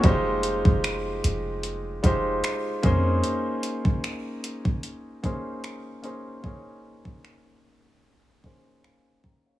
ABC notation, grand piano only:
X:1
M:4/4
L:1/16
Q:"Swing 16ths" 1/4=75
K:Bbdor
V:1 name="Grand piano"
[G,A,EFGc]6 z4 [A,EFGc]2 z2 [B,DEAc]2- | [B,DEAc]4 z6 [B,DEAc]2 z2 [B,DEAc]2 | [B,DEAd]6 z4 [B,DEAc]2 f2 g [df] |]